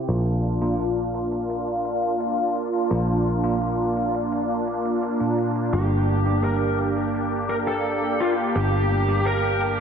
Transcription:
0.09 A#1 A#2 A#3 D4 F4, closed hi-hat
0.44 closed hi-hat
0.61 A#2 A#3 D4 F4, closed hi-hat
0.79 closed hi-hat
1.14 closed hi-hat
1.32 closed hi-hat
1.50 closed hi-hat
1.85 closed hi-hat
2.03 closed hi-hat
2.20 closed hi-hat
2.56 closed hi-hat
2.73 closed hi-hat
2.91 A#1 A#2 A#3 D4 F4, closed hi-hat
3.26 closed hi-hat
3.44 A#2 A#3 D4 F4, closed hi-hat
3.62 closed hi-hat
3.97 closed hi-hat
4.15 closed hi-hat
4.32 closed hi-hat
4.67 closed hi-hat
4.85 closed hi-hat
5.03 closed hi-hat
5.20 A#2 A#3 D4 F4
5.38 closed hi-hat
5.56 closed hi-hat
5.73 G1 G2 A#3 D4 G4, closed hi-hat
6.09 closed hi-hat
6.26 G2 A#3 D4 G4, closed hi-hat
6.44 A#4, closed hi-hat
6.79 closed hi-hat
6.97 closed hi-hat
7.14 closed hi-hat
7.50 A#4, closed hi-hat
7.67 A4, closed hi-hat
7.85 closed hi-hat
8.20 F4, closed hi-hat
8.38 closed hi-hat
8.56 G1 G2 A#3 D4 G4, closed hi-hat
8.91 closed hi-hat
9.08 G2 A#3 D4 G4, closed hi-hat
9.26 A#4, closed hi-hat
9.62 closed hi-hat

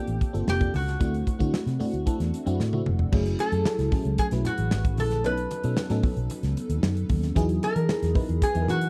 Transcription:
Already playing: A#3 C4 D4 F4 G4 A4
0.07 A1, closed hi-hat
0.21 kick, closed hi-hat
0.33 G1 A#3 C4 D4 F4 A4, closed hi-hat
0.47 F1 G4, snare, high conga
0.60 A#3 C4 D4 F4 A4, kick, closed hi-hat
0.74 C#2 F#4, open hi-hat, high conga
0.88 snare, closed hi-hat
0.99 D2 A3 C4 D4 E4 F#4, kick, closed hi-hat, muted conga
1.14 closed hi-hat
1.27 kick, closed hi-hat, muted conga
1.39 D3 A3 C4 D4 E4 F#4, kick, closed hi-hat
1.54 snare, high conga
1.67 C3, snare, closed hi-hat
1.79 A3 C4 D4 E4 F#4, open hi-hat, low conga
1.93 D2, closed hi-hat
2.06 A3 C4 D4 E4 A4, kick, closed hi-hat, muted conga
2.20 E2, snare, closed hi-hat
2.34 closed hi-hat
2.46 F#2 A3 C4 D4 E4 F#4, closed hi-hat
2.60 A2, snare, high conga
2.73 A3 C4 D4 E4 F#4, high tom
2.86 F1, mid tom, high conga
2.99 floor tom
3.12 F#1 F#3 A3 C#4 E4 G#4, kick, crash, muted conga
3.26 closed hi-hat
3.39 A4, closed hi-hat, muted conga
3.52 F#2, closed hi-hat
3.65 snare, high conga
3.79 C#2, snare, closed hi-hat
3.92 F#3 A3 C#4 E4 G#4, kick, open hi-hat, low conga
4.05 C#2, closed hi-hat
4.18 G#4, kick, closed hi-hat, muted conga
4.31 B1 F#3 A3 C#4 E4 B4, snare, closed hi-hat
4.45 F#4, closed hi-hat, muted conga, low conga
4.58 A1, closed hi-hat
4.71 G#1, snare, high conga
4.85 kick, closed hi-hat
4.97 A#1 A4, open hi-hat, high conga
5.11 snare, closed hi-hat, high conga
5.24 B1 F#3 B3 C#4 D#4 A4 B4, closed hi-hat, muted conga
5.37 closed hi-hat
5.51 closed hi-hat, muted conga
5.64 B2 F#3 B3 C#4 D#4 A4, closed hi-hat
5.77 snare, high conga
5.89 A2 F#3 B3 C#4 D#4 A4, snare, closed hi-hat
6.03 kick, open hi-hat, low conga
6.17 B1, closed hi-hat
6.30 closed hi-hat, muted conga
6.43 C#2, snare, closed hi-hat
6.57 closed hi-hat, muted conga
6.69 D#2, closed hi-hat
6.83 F#2, snare, high conga
6.97 closed hi-hat
7.09 D#2, kick, open hi-hat, high conga
7.23 snare, closed hi-hat, high conga
7.35 E2 F#3 B3 D#4 E4 G#4, kick, closed hi-hat, muted conga
7.49 closed hi-hat
7.63 A#4, closed hi-hat, muted conga
7.76 E3, closed hi-hat
7.89 snare, high conga
8.02 E2, snare, closed hi-hat
8.14 F#3 B3 D#4 E4 B4, kick, open hi-hat, low conga
8.29 E2, closed hi-hat
8.42 G#4, kick, closed hi-hat, muted conga
8.55 E2 F#3 B3 D#4 E4 G#4, closed hi-hat
8.62 A#4
8.68 E3 F#4, closed hi-hat, muted conga, low conga
8.81 closed hi-hat

